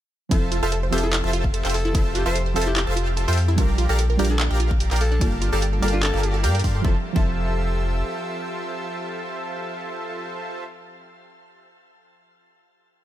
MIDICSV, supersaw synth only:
0, 0, Header, 1, 2, 480
1, 0, Start_track
1, 0, Key_signature, -1, "major"
1, 0, Tempo, 408163
1, 370, Time_signature, 4, 2, 24, 8
1, 15339, End_track
2, 0, Start_track
2, 0, Title_t, "Supersaw synth"
2, 0, Program_c, 0, 81
2, 368, Note_on_c, 0, 65, 81
2, 368, Note_on_c, 0, 69, 76
2, 369, Note_on_c, 0, 72, 74
2, 369, Note_on_c, 0, 76, 76
2, 369, Note_on_c, 0, 81, 89
2, 707, Note_off_c, 0, 65, 0
2, 707, Note_off_c, 0, 69, 0
2, 707, Note_off_c, 0, 81, 0
2, 708, Note_off_c, 0, 72, 0
2, 708, Note_off_c, 0, 76, 0
2, 737, Note_on_c, 0, 72, 84
2, 737, Note_on_c, 0, 81, 101
2, 738, Note_on_c, 0, 69, 82
2, 738, Note_on_c, 0, 76, 81
2, 739, Note_on_c, 0, 65, 89
2, 859, Note_off_c, 0, 69, 0
2, 859, Note_off_c, 0, 72, 0
2, 859, Note_off_c, 0, 76, 0
2, 859, Note_off_c, 0, 81, 0
2, 860, Note_off_c, 0, 65, 0
2, 1087, Note_on_c, 0, 69, 71
2, 1087, Note_on_c, 0, 76, 71
2, 1088, Note_on_c, 0, 65, 81
2, 1088, Note_on_c, 0, 72, 69
2, 1088, Note_on_c, 0, 81, 85
2, 1225, Note_off_c, 0, 69, 0
2, 1225, Note_off_c, 0, 76, 0
2, 1226, Note_off_c, 0, 65, 0
2, 1226, Note_off_c, 0, 72, 0
2, 1226, Note_off_c, 0, 81, 0
2, 1456, Note_on_c, 0, 69, 77
2, 1457, Note_on_c, 0, 65, 82
2, 1457, Note_on_c, 0, 72, 75
2, 1457, Note_on_c, 0, 76, 76
2, 1457, Note_on_c, 0, 81, 93
2, 1907, Note_off_c, 0, 65, 0
2, 1907, Note_off_c, 0, 69, 0
2, 1907, Note_off_c, 0, 72, 0
2, 1907, Note_off_c, 0, 76, 0
2, 1907, Note_off_c, 0, 81, 0
2, 1936, Note_on_c, 0, 65, 76
2, 1936, Note_on_c, 0, 72, 70
2, 1936, Note_on_c, 0, 76, 70
2, 1936, Note_on_c, 0, 79, 85
2, 1937, Note_on_c, 0, 69, 69
2, 2058, Note_off_c, 0, 65, 0
2, 2058, Note_off_c, 0, 69, 0
2, 2058, Note_off_c, 0, 72, 0
2, 2058, Note_off_c, 0, 76, 0
2, 2058, Note_off_c, 0, 79, 0
2, 2289, Note_on_c, 0, 65, 82
2, 2289, Note_on_c, 0, 72, 76
2, 2289, Note_on_c, 0, 76, 78
2, 2290, Note_on_c, 0, 69, 77
2, 2290, Note_on_c, 0, 81, 89
2, 2628, Note_off_c, 0, 65, 0
2, 2628, Note_off_c, 0, 69, 0
2, 2628, Note_off_c, 0, 72, 0
2, 2628, Note_off_c, 0, 76, 0
2, 2628, Note_off_c, 0, 81, 0
2, 2656, Note_on_c, 0, 65, 90
2, 2656, Note_on_c, 0, 69, 81
2, 2656, Note_on_c, 0, 72, 83
2, 2656, Note_on_c, 0, 81, 100
2, 2657, Note_on_c, 0, 76, 82
2, 2778, Note_off_c, 0, 65, 0
2, 2778, Note_off_c, 0, 69, 0
2, 2778, Note_off_c, 0, 72, 0
2, 2778, Note_off_c, 0, 81, 0
2, 2779, Note_off_c, 0, 76, 0
2, 3010, Note_on_c, 0, 69, 72
2, 3010, Note_on_c, 0, 76, 70
2, 3011, Note_on_c, 0, 65, 78
2, 3011, Note_on_c, 0, 72, 73
2, 3011, Note_on_c, 0, 81, 90
2, 3147, Note_off_c, 0, 65, 0
2, 3147, Note_off_c, 0, 69, 0
2, 3147, Note_off_c, 0, 72, 0
2, 3147, Note_off_c, 0, 76, 0
2, 3147, Note_off_c, 0, 81, 0
2, 3377, Note_on_c, 0, 81, 92
2, 3378, Note_on_c, 0, 65, 85
2, 3378, Note_on_c, 0, 69, 77
2, 3378, Note_on_c, 0, 72, 77
2, 3378, Note_on_c, 0, 76, 77
2, 3828, Note_off_c, 0, 65, 0
2, 3828, Note_off_c, 0, 69, 0
2, 3828, Note_off_c, 0, 72, 0
2, 3828, Note_off_c, 0, 76, 0
2, 3828, Note_off_c, 0, 81, 0
2, 3857, Note_on_c, 0, 69, 70
2, 3857, Note_on_c, 0, 72, 72
2, 3857, Note_on_c, 0, 76, 69
2, 3857, Note_on_c, 0, 79, 87
2, 3858, Note_on_c, 0, 65, 76
2, 3979, Note_off_c, 0, 65, 0
2, 3979, Note_off_c, 0, 69, 0
2, 3979, Note_off_c, 0, 72, 0
2, 3979, Note_off_c, 0, 76, 0
2, 3979, Note_off_c, 0, 79, 0
2, 4208, Note_on_c, 0, 67, 84
2, 4209, Note_on_c, 0, 70, 76
2, 4209, Note_on_c, 0, 74, 74
2, 4209, Note_on_c, 0, 77, 74
2, 4209, Note_on_c, 0, 82, 92
2, 4547, Note_off_c, 0, 67, 0
2, 4547, Note_off_c, 0, 77, 0
2, 4548, Note_off_c, 0, 70, 0
2, 4548, Note_off_c, 0, 74, 0
2, 4548, Note_off_c, 0, 82, 0
2, 4577, Note_on_c, 0, 74, 80
2, 4577, Note_on_c, 0, 82, 97
2, 4578, Note_on_c, 0, 67, 93
2, 4578, Note_on_c, 0, 70, 79
2, 4578, Note_on_c, 0, 77, 82
2, 4699, Note_off_c, 0, 67, 0
2, 4699, Note_off_c, 0, 70, 0
2, 4699, Note_off_c, 0, 74, 0
2, 4699, Note_off_c, 0, 77, 0
2, 4699, Note_off_c, 0, 82, 0
2, 4929, Note_on_c, 0, 67, 80
2, 4929, Note_on_c, 0, 77, 74
2, 4930, Note_on_c, 0, 70, 72
2, 4930, Note_on_c, 0, 74, 71
2, 4930, Note_on_c, 0, 82, 88
2, 5066, Note_off_c, 0, 67, 0
2, 5066, Note_off_c, 0, 77, 0
2, 5067, Note_off_c, 0, 70, 0
2, 5067, Note_off_c, 0, 74, 0
2, 5067, Note_off_c, 0, 82, 0
2, 5299, Note_on_c, 0, 70, 75
2, 5300, Note_on_c, 0, 67, 85
2, 5300, Note_on_c, 0, 77, 78
2, 5301, Note_on_c, 0, 74, 75
2, 5301, Note_on_c, 0, 82, 95
2, 5749, Note_off_c, 0, 67, 0
2, 5749, Note_off_c, 0, 70, 0
2, 5749, Note_off_c, 0, 74, 0
2, 5749, Note_off_c, 0, 77, 0
2, 5749, Note_off_c, 0, 82, 0
2, 5779, Note_on_c, 0, 67, 75
2, 5779, Note_on_c, 0, 70, 71
2, 5779, Note_on_c, 0, 79, 87
2, 5780, Note_on_c, 0, 74, 70
2, 5780, Note_on_c, 0, 77, 71
2, 5900, Note_off_c, 0, 67, 0
2, 5900, Note_off_c, 0, 70, 0
2, 5900, Note_off_c, 0, 74, 0
2, 5900, Note_off_c, 0, 77, 0
2, 5900, Note_off_c, 0, 79, 0
2, 6130, Note_on_c, 0, 70, 77
2, 6131, Note_on_c, 0, 67, 82
2, 6131, Note_on_c, 0, 74, 74
2, 6131, Note_on_c, 0, 77, 75
2, 6131, Note_on_c, 0, 81, 91
2, 6468, Note_off_c, 0, 67, 0
2, 6468, Note_off_c, 0, 70, 0
2, 6468, Note_off_c, 0, 77, 0
2, 6469, Note_off_c, 0, 74, 0
2, 6469, Note_off_c, 0, 81, 0
2, 6498, Note_on_c, 0, 81, 101
2, 6499, Note_on_c, 0, 67, 90
2, 6499, Note_on_c, 0, 70, 81
2, 6500, Note_on_c, 0, 74, 83
2, 6500, Note_on_c, 0, 77, 82
2, 6619, Note_off_c, 0, 81, 0
2, 6620, Note_off_c, 0, 67, 0
2, 6620, Note_off_c, 0, 70, 0
2, 6620, Note_off_c, 0, 74, 0
2, 6620, Note_off_c, 0, 77, 0
2, 6849, Note_on_c, 0, 70, 73
2, 6849, Note_on_c, 0, 77, 71
2, 6849, Note_on_c, 0, 81, 88
2, 6850, Note_on_c, 0, 67, 80
2, 6850, Note_on_c, 0, 74, 74
2, 6986, Note_off_c, 0, 70, 0
2, 6986, Note_off_c, 0, 77, 0
2, 6986, Note_off_c, 0, 81, 0
2, 6987, Note_off_c, 0, 67, 0
2, 6987, Note_off_c, 0, 74, 0
2, 7217, Note_on_c, 0, 67, 86
2, 7218, Note_on_c, 0, 70, 78
2, 7218, Note_on_c, 0, 74, 78
2, 7218, Note_on_c, 0, 77, 80
2, 7218, Note_on_c, 0, 81, 93
2, 7548, Note_off_c, 0, 67, 0
2, 7548, Note_off_c, 0, 70, 0
2, 7548, Note_off_c, 0, 74, 0
2, 7548, Note_off_c, 0, 77, 0
2, 7548, Note_off_c, 0, 81, 0
2, 7569, Note_on_c, 0, 77, 76
2, 7570, Note_on_c, 0, 67, 85
2, 7570, Note_on_c, 0, 70, 75
2, 7570, Note_on_c, 0, 74, 76
2, 7570, Note_on_c, 0, 79, 89
2, 7776, Note_off_c, 0, 77, 0
2, 7777, Note_off_c, 0, 67, 0
2, 7777, Note_off_c, 0, 70, 0
2, 7777, Note_off_c, 0, 74, 0
2, 7777, Note_off_c, 0, 79, 0
2, 7810, Note_on_c, 0, 67, 79
2, 7810, Note_on_c, 0, 77, 75
2, 7811, Note_on_c, 0, 70, 73
2, 7811, Note_on_c, 0, 74, 74
2, 7811, Note_on_c, 0, 84, 91
2, 8024, Note_off_c, 0, 67, 0
2, 8024, Note_off_c, 0, 70, 0
2, 8024, Note_off_c, 0, 74, 0
2, 8024, Note_off_c, 0, 77, 0
2, 8024, Note_off_c, 0, 84, 0
2, 8049, Note_on_c, 0, 69, 81
2, 8049, Note_on_c, 0, 81, 95
2, 8050, Note_on_c, 0, 65, 88
2, 8050, Note_on_c, 0, 72, 82
2, 8050, Note_on_c, 0, 76, 81
2, 8190, Note_off_c, 0, 69, 0
2, 8190, Note_off_c, 0, 72, 0
2, 8190, Note_off_c, 0, 81, 0
2, 8191, Note_off_c, 0, 65, 0
2, 8191, Note_off_c, 0, 76, 0
2, 8421, Note_on_c, 0, 65, 85
2, 8421, Note_on_c, 0, 72, 78
2, 8421, Note_on_c, 0, 81, 97
2, 8422, Note_on_c, 0, 69, 81
2, 8422, Note_on_c, 0, 76, 80
2, 12513, Note_off_c, 0, 65, 0
2, 12513, Note_off_c, 0, 72, 0
2, 12513, Note_off_c, 0, 81, 0
2, 12514, Note_off_c, 0, 69, 0
2, 12514, Note_off_c, 0, 76, 0
2, 15339, End_track
0, 0, End_of_file